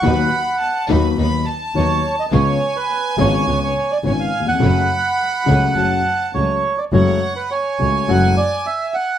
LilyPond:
<<
  \new Staff \with { instrumentName = "Violin section" } { \time 4/4 \key fis \minor \tempo 4 = 105 b''4 a''8 b''8 b''8 a''4. | gis''2. gis''4 | b''2 a''4. r8 | fis''4 gis''2. | }
  \new Staff \with { instrumentName = "Bandoneon" } { \time 4/4 \key fis \minor fis''4. r4. cis''8. dis''16 | cis''8. b'8. cis''8. cis''8 d''16 cis''16 eis''8 fis''16~ | fis''2. cis''8. d''16 | cis''8. b'16 cis''4 fis''8 d''8 e''8 fis''8 | }
  \new Staff \with { instrumentName = "String section" } { \time 4/4 \key fis \minor <fis b dis'>8 r4 <fis b dis'>8 <fis b dis'>8 r8 <fis b dis'>8 r8 | <eis b cis'>8 r4 <eis b cis'>8 <eis b cis'>8 r8 <eis b cis'>8 r8 | <fis a cis'>8 r4 <fis a cis'>8 <fis a cis'>8 r8 <fis a cis'>8 r8 | r1 | }
  \new Staff \with { instrumentName = "Grand piano" } { \clef bass \time 4/4 \key fis \minor <dis, dis fis b fis'>8 r4 <dis, dis fis b fis'>8 <dis, dis fis b fis'>8 r8 <dis, dis fis b fis'>8 r8 | <cis, cis gis b eis'>8 r4 <gis,, gis, cis gis b eis'>8 <cis, cis gis b eis'>8 r8 <gis,, gis, cis gis b eis'>8 r32 dis,32 e,32 eis,32 | <fis, cis fis a fis'>8 r4 <cis, cis fis a fis'>8 <fis, cis fis a fis'>8 r8 <cis, cis fis a fis'>8 r8 | <fis, cis fis gis a fis'>8 r4 <cis, cis gis a fis'>8 <fis, cis fis gis a fis'>8 r4. | }
  \new Staff \with { instrumentName = "Double bass" } { \clef bass \time 4/4 \key fis \minor dis,8 r4 dis,8 dis,8 r8 dis,8 r8 | cis,8 r4 gis,,8 cis,8 r8 gis,,8 r8 | fis,,8 r4 cis,8 fis,,8 r8 cis,8 r8 | fis,,8 r4 cis,8 fis,,8 r4. | }
>>